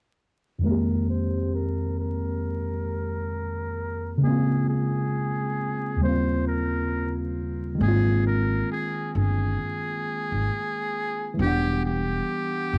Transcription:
0.58 synth keys F2 D#3
0.63 synth keys G#3 A#3, muted trumpet A#4
0.68 synth keys C4 G4
1.10 muted trumpet C5
1.55 muted trumpet A#4
1.99 muted trumpet A#4
4.17 synth keys C#3 G#3
4.24 synth keys A#3 C4, muted trumpet G#4
4.30 synth keys F4
4.69 muted trumpet G#4
5.96 synth keys D#2 C#3
6.01 synth keys G3 A#3, muted trumpet C5
6.06 synth keys C4 F4
6.47 muted trumpet A#4
7.75 synth keys D#3 G#3
7.81 upright bass G#1, synth keys A#3 C4, muted trumpet G#4
7.88 synth keys F4
8.27 muted trumpet A#4
8.72 muted trumpet G#4
9.15 upright bass G1, muted trumpet G#4
10.32 upright bass G#1
11.34 synth keys E3 G3
11.39 upright bass E1, synth keys B3, muted trumpet G4
11.43 synth keys D4 F#5
11.85 muted trumpet G4
12.73 upright bass G1

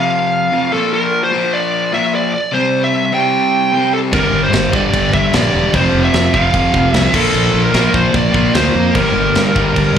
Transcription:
Already playing: overdriven electric guitar F2 C3 F3, lead electric guitar F5
0.51 overdriven electric guitar F2 C3 F3
0.72 overdriven electric guitar A#2 F3 A#3, lead electric guitar A4
0.93 lead electric guitar A#4
1.24 lead electric guitar C5
1.31 overdriven electric guitar A#2 F3 A#3
1.54 lead electric guitar D5
1.92 overdriven electric guitar A#2 F3 A#3, lead electric guitar E5
2.15 lead electric guitar D5
2.34 lead electric guitar D5
2.52 overdriven electric guitar C3 G3 C4, lead electric guitar C5
2.84 lead electric guitar E5
3.12 overdriven electric guitar C3 G3 C4, lead electric guitar G5
3.72 overdriven electric guitar C3 G3 C4
3.94 lead electric guitar A4
4.13 fingered electric bass G1, overdriven electric guitar G2 D3 G3, lead electric guitar A#4, kick, crash
4.33 fingered electric bass G1
4.43 lead electric guitar C5
4.53 fingered electric bass G1, snare, crash
4.72 fingered electric bass G1, overdriven electric guitar G2 D3 G3, lead electric guitar D5, kick
4.94 fingered electric bass G1, kick, crash
5.14 fingered electric bass G1, lead electric guitar E5, kick
5.32 fingered electric bass A#1, overdriven electric guitar G2 D3 G3, lead electric guitar D5, snare, crash
5.54 fingered electric bass E1
5.73 fingered electric bass F1, overdriven electric guitar F2 C3 F3, lead electric guitar C5, kick, crash
5.95 fingered electric bass F1
6.04 lead electric guitar E5
6.14 fingered electric bass F2, snare, crash
6.33 fingered electric bass F1, overdriven electric guitar F2 C3 F3, lead electric guitar F5, kick
6.54 fingered electric bass F1, kick, crash
6.74 fingered electric bass F1, kick
6.90 fingered electric bass C2, overdriven electric guitar F2, lead electric guitar E5, crash
6.95 overdriven electric guitar C3 F3, snare
7.13 fingered electric bass A#1, overdriven electric guitar A#2 F3 A#3, lead electric guitar A4, kick, crash
7.34 fingered electric bass A#1, crash
7.54 fingered electric bass A#1
7.65 lead electric guitar A#4
7.73 fingered electric bass A#1, overdriven electric guitar A#2 F3 A#3, snare, crash
7.94 fingered electric bass A#1, lead electric guitar C5, kick
8.14 fingered electric bass A#1, lead electric guitar D5, kick, crash
8.33 fingered electric bass A#1, overdriven electric guitar A#2 F3 A#3, kick
8.54 fingered electric bass D2, lead electric guitar C5, snare, crash
8.75 fingered electric bass F2
8.93 fingered electric bass G1, overdriven electric guitar G2 D3 G3, lead electric guitar A#4, kick, crash
9.16 fingered electric bass G1
9.35 fingered electric bass G2, snare, crash
9.55 fingered electric bass G1, overdriven electric guitar G2 D3 G3, kick
9.76 fingered electric bass G1, kick, crash

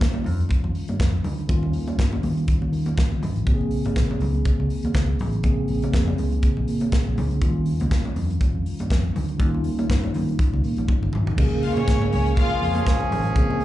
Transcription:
Already playing: tine electric piano D#3 G3 C#4 F4
0.00 fingered electric bass D#2, kick, snare, closed hi-hat, muted conga
0.14 muted conga, high conga
0.24 fingered electric bass F2, open hi-hat, low conga
0.40 closed hi-hat
0.49 kick, closed hi-hat, muted conga
0.64 fingered electric bass F2, muted conga
0.75 open hi-hat
0.88 fingered electric bass G2, closed hi-hat, high conga
1.00 fingered electric bass F2, kick, snare, closed hi-hat
1.24 fingered electric bass D2, open hi-hat, low conga
1.38 closed hi-hat
1.47 fingered electric bass D#2, tine electric piano D#3 G3 C#4 F4, kick, closed hi-hat, muted conga
1.63 muted conga
1.73 fingered electric bass D#2, open hi-hat
1.88 closed hi-hat, high conga
1.99 fingered electric bass G2, kick, snare, closed hi-hat, muted conga
2.13 high conga
2.23 fingered electric bass D#2, open hi-hat, low conga
2.37 closed hi-hat
2.48 kick, closed hi-hat
2.62 fingered electric bass D#2, muted conga
2.72 fingered electric bass D#3, open hi-hat
2.86 closed hi-hat, high conga
2.97 kick, snare, closed hi-hat
3.11 fingered electric bass D#2, muted conga
3.22 fingered electric bass G#1, open hi-hat, low conga
3.36 fingered electric bass A1, closed hi-hat
3.45 fingered electric bass A#1, tine electric piano C#3 A#3 C4 G4, kick, closed hi-hat
3.54 tine electric piano G#4
3.61 muted conga
3.71 open hi-hat
3.85 fingered electric bass G#1, closed hi-hat, high conga
3.96 fingered electric bass A#1, kick, snare, closed hi-hat, muted conga
4.11 high conga
4.20 fingered electric bass C#2, open hi-hat, low conga
4.34 closed hi-hat
4.45 kick, closed hi-hat, muted conga
4.59 fingered electric bass C#2, muted conga
4.70 open hi-hat
4.83 fingered electric bass D#2, closed hi-hat, high conga
4.94 fingered electric bass C#2, kick, snare, closed hi-hat, muted conga
5.19 fingered electric bass A1, open hi-hat, low conga
5.33 closed hi-hat
5.43 fingered electric bass A#1, tine electric piano C#3 A#3 C4 G#4, kick, closed hi-hat, muted conga
5.68 fingered electric bass A#1, open hi-hat
5.82 closed hi-hat, high conga
5.94 fingered electric bass F2, kick, snare, closed hi-hat, muted conga
6.08 muted conga, high conga
6.18 fingered electric bass C#2, open hi-hat, low conga
6.32 closed hi-hat
6.43 kick, closed hi-hat, muted conga
6.57 fingered electric bass A#1, muted conga
6.68 fingered electric bass A#2, open hi-hat
6.80 closed hi-hat, high conga
6.92 kick, snare, closed hi-hat
7.07 fingered electric bass A#1, muted conga
7.18 fingered electric bass C#2, open hi-hat, low conga
7.31 fingered electric bass D2, closed hi-hat
7.40 fingered electric bass D#2, tine electric piano D#3 F3 C#4 F4, kick, closed hi-hat
7.47 tine electric piano G3
7.66 open hi-hat
7.80 fingered electric bass C#2, closed hi-hat, high conga
7.91 fingered electric bass D#2, kick, snare, closed hi-hat
8.05 muted conga, high conga
8.16 fingered electric bass F2, open hi-hat, low conga
8.30 closed hi-hat
8.41 kick, closed hi-hat, muted conga
8.55 fingered electric bass F2
8.66 open hi-hat
8.79 fingered electric bass G2, closed hi-hat, high conga
8.90 fingered electric bass F2, kick, snare, closed hi-hat, muted conga
9.15 fingered electric bass D2, open hi-hat, low conga
9.29 closed hi-hat
9.38 fingered electric bass D#2, tine electric piano D#3 G3 C#4 D#4, kick, closed hi-hat, muted conga
9.47 tine electric piano F4
9.54 muted conga
9.64 fingered electric bass D#2, open hi-hat
9.79 closed hi-hat, high conga
9.90 fingered electric bass G2, kick, snare, closed hi-hat
10.04 muted conga, high conga
10.14 fingered electric bass D#2, open hi-hat, low conga
10.29 closed hi-hat
10.39 kick, closed hi-hat
10.53 fingered electric bass C#2, muted conga
10.64 fingered electric bass A#2, open hi-hat
10.77 fingered electric bass A#1, closed hi-hat, high conga
10.88 kick, high tom, muted conga
11.02 fingered electric bass G1, muted conga
11.13 fingered electric bass G#1, mid tom, low conga
11.27 fingered electric bass A1, floor tom
11.36 fingered electric bass A#1, tine electric piano C#3 A#3 C#4 G4, tonewheel organ C#3 G#3 A#3, kick, crash
11.45 tine electric piano G#4
11.62 string section F4 F5, open hi-hat
11.75 fingered electric bass A#2, string section C#4 C#5, closed hi-hat, high conga
11.88 fingered electric bass G#2, kick, snare, closed hi-hat
12.02 muted conga, high conga
12.12 fingered electric bass C#2, string section C#4 C#5, open hi-hat, low conga
12.26 closed hi-hat
12.36 horn section F3 C#4 G#4, string section F4 F5, kick, closed hi-hat, muted conga
12.50 muted conga
12.62 fingered electric bass F2, open hi-hat
12.75 closed hi-hat, high conga
12.86 kick, snare, closed hi-hat
13.00 muted conga
13.11 fingered electric bass A1, open hi-hat, low conga
13.25 closed hi-hat
13.34 fingered electric bass A#1, tine electric piano C#3 A#3 C4 G#4, kick, closed hi-hat, muted conga
13.50 muted conga
13.60 open hi-hat

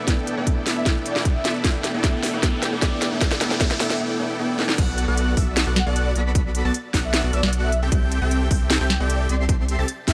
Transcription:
Already playing: grand piano A3 B3 D4 E4, riser
0.07 grand piano A3 B3 D4 E4, supersaw synth B3 E4 A4 G5, kick, snare, closed hi-hat
0.27 closed hi-hat
0.35 grand piano A3 B3 D4 E4, supersaw synth B3 E4 A4 D5 G5
0.47 kick, closed hi-hat
0.66 supersaw synth B3 E4 A4 D5 E5, snare, open hi-hat
0.77 soft synth lead E5
0.85 grand piano A3 B3 D4 E4, supersaw synth B3 E4 A4 D5 G5, kick, snare, closed hi-hat
1.06 soft synth lead D5, closed hi-hat
1.14 grand piano A3 B3 D4 E4, supersaw synth B3 E4 A4 D5 G5, snare
1.25 kick, closed hi-hat
1.35 soft synth lead E5
1.45 supersaw synth B3 E4 A4 D5 E5, snare, closed hi-hat
1.63 grand piano A3 B3 D4 E4, supersaw synth B3 E4 A4 D5 G5, kick, snare, closed hi-hat
1.84 snare, closed hi-hat
1.92 grand piano A3 B3 D4, supersaw synth B3 E4 A4 D5 G5
1.96 grand piano E4
2.03 grand piano A3 B3 D4 E4, supersaw synth B3 E4 D5 G5, kick, snare, closed hi-hat
2.23 snare, open hi-hat
2.32 grand piano A3 B3 D4, supersaw synth B3 E4 A4 D5 G5
2.36 grand piano E4
2.42 grand piano A3 B3 D4 E4, supersaw synth B3 A4 G5, kick, snare, closed hi-hat
2.62 soft synth lead G5, snare, closed hi-hat
2.71 grand piano A3 B3 D4 E4, supersaw synth B3 E4 A4 D5 G5, soft synth lead D5
2.81 grand piano A3 B3 D4 E4, supersaw synth D5, kick, snare, closed hi-hat
3.02 snare, closed hi-hat
3.10 grand piano A3 B3 D4, supersaw synth B3 E4 A4 D5 G5
3.14 grand piano E4
3.20 grand piano A3 B3 D4 E4, kick, snare, closed hi-hat
3.31 snare
3.40 grand piano A3 B3 D4 E4, supersaw synth B3 E4 A4 D5 G5, snare, closed hi-hat
3.51 snare
3.59 grand piano A3 B3 D4 E4, supersaw synth B3 D5, kick, snare, closed hi-hat
3.71 snare
3.79 grand piano A3 B3 D4 E4, supersaw synth B3 E4 A4 D5 G5, soft synth lead E5, snare, open hi-hat
3.90 soft synth lead E5, snare
4.00 supersaw synth B3 E4 A4 D5 G5
4.19 supersaw synth B3 E4 A4 D5 G5
4.39 supersaw synth B3 E4 A4 D5 G5
4.59 supersaw synth B3 E4 A4 D5 G5, snare
4.69 snare
4.78 sub bass B1, supersaw synth B3 F#4 A4 D5 F#5, digital synth lead F#6, kick, closed hi-hat, crash
4.98 closed hi-hat
5.08 sub bass B1, supersaw synth B3 F#4 A4 D5 F#5, digital synth lead F#6
5.17 closed hi-hat
5.37 sub bass B1, supersaw synth B3 F#4 A4 D5 E5, digital synth lead E6, kick, open hi-hat
5.57 snare, closed hi-hat
5.67 sub bass B1, supersaw synth B3 F#4 A4 D5 F#5, digital synth lead F#6
5.76 soft synth lead F#5, snare, closed hi-hat
5.86 sub bass B1, supersaw synth B3 F#4 A4 D5 F#5, soft synth lead D5, digital synth lead F#6
5.96 closed hi-hat
6.15 sub bass B1, supersaw synth B3 F#4 A4 D5 B5, digital synth lead B6, closed hi-hat
6.35 kick, closed hi-hat
6.55 closed hi-hat
6.65 sub bass B1, supersaw synth B3 F#4 A4 D5 A5, digital synth lead A6
6.74 closed hi-hat
6.94 sub bass B1, supersaw synth B3 F#4 A4 D5 F#5, digital synth lead F#6, kick, snare, open hi-hat
7.04 soft synth lead E5
7.14 snare, closed hi-hat
7.24 sub bass B1, supersaw synth B3 F#4 A4 D5 F#5, digital synth lead F#6
7.33 sub bass B1, supersaw synth B3 F#4 A4 D5 E5, soft synth lead D5, digital synth lead E6, closed hi-hat
7.43 sub bass B1, supersaw synth B3 F#4 A4 D5 F#5, digital synth lead F#6, snare
7.53 closed hi-hat
7.63 soft synth lead E5
7.72 closed hi-hat
7.82 sub bass C2, supersaw synth C4 G4 A4 E5 G5, digital synth lead G6
7.92 sub bass C2, supersaw synth C4 G4 A4 E5 G5, digital synth lead G6, kick, closed hi-hat
8.12 closed hi-hat
8.22 sub bass C2, supersaw synth C4 G4 A4 E5 G5, digital synth lead G6
8.31 closed hi-hat
8.51 sub bass C2, supersaw synth C4, digital synth lead G6, kick, open hi-hat
8.70 snare, closed hi-hat
8.80 sub bass C2, supersaw synth C4 G4 A4 E5 G5, digital synth lead G6
8.90 soft synth lead G5, snare, closed hi-hat
9.00 sub bass C2, supersaw synth C4 G4 A4 E5 G5, soft synth lead D5, digital synth lead G6
9.10 closed hi-hat
9.29 sub bass C2, supersaw synth C4 G4 A4 E5 C6, digital synth lead C7, closed hi-hat
9.49 kick, closed hi-hat
9.68 closed hi-hat
9.79 sub bass C2, supersaw synth C4 G4 A4 E5 A5, digital synth lead A6
9.88 closed hi-hat
10.08 sub bass C2, supersaw synth C4 G4 A4 E5 G5, soft synth lead E5, digital synth lead G6, kick, snare, open hi-hat

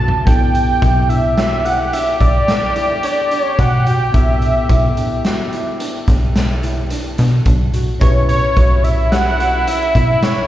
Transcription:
Already playing: analog synth bass B1, tine electric piano C#4 E4 F#4, analog synth lead A5
0.00 felt piano F#4
0.08 floor tom
0.25 analog synth bass B1, tine electric piano B3 E4 A4, felt piano D4, trombone G4, analog synth lead G5, kick, closed hi-hat
0.55 closed hi-hat
0.82 analog synth bass B1, felt piano E4, kick, closed hi-hat
1.09 felt piano D4, analog synth lead E5, closed hi-hat
1.37 felt piano F#4, analog synth lead E5, snare, closed hi-hat
1.65 felt piano E4, analog synth lead F#5, closed hi-hat
1.93 felt piano D4, analog synth lead E5, closed hi-hat
2.20 analog synth bass B1, felt piano D4, analog synth lead D5, kick, closed hi-hat
2.48 snare, closed hi-hat
2.76 felt piano E4, closed hi-hat
3.03 felt piano D4, analog synth lead D5, closed hi-hat
3.31 felt piano D4, closed hi-hat
3.41 analog synth lead C#5
3.59 analog synth bass B2, felt piano D4, analog synth lead F#5, kick, closed hi-hat
3.86 felt piano F#4, analog synth lead G5, closed hi-hat
4.12 analog synth bass B1, tine electric piano B3 E4 A4, felt piano D4, analog synth lead E5, kick, closed hi-hat
4.42 closed hi-hat
4.69 analog synth bass B1, felt piano E4, kick, closed hi-hat
4.97 felt piano D4, closed hi-hat
5.25 felt piano F#4, snare, closed hi-hat
5.53 felt piano E4, closed hi-hat
5.80 felt piano D4, closed hi-hat
6.07 analog synth bass B1, felt piano D4, kick, snare, closed hi-hat
6.36 snare, closed hi-hat
6.63 felt piano E4, closed hi-hat
6.90 felt piano D4, closed hi-hat
7.18 analog synth bass B2, felt piano D4, snare, closed hi-hat
7.46 analog synth bass B1, felt piano D4, kick, closed hi-hat
7.74 felt piano F#4, closed hi-hat
8.00 analog synth bass B1, tine electric piano C#4 G4 B4, trombone E4, felt piano E4, analog synth lead C#5, kick, closed hi-hat
8.29 analog synth lead C#5, closed hi-hat
8.57 analog synth bass B1, felt piano F#4, kick, closed hi-hat
8.84 felt piano E4, analog synth lead E5, closed hi-hat
9.12 felt piano G4, analog synth lead F#5, snare, closed hi-hat
9.40 felt piano F#4, closed hi-hat
9.67 felt piano E4, analog synth lead E5, closed hi-hat
9.95 analog synth bass B1, felt piano E4, kick, closed hi-hat
10.23 analog synth lead C#5, snare, closed hi-hat

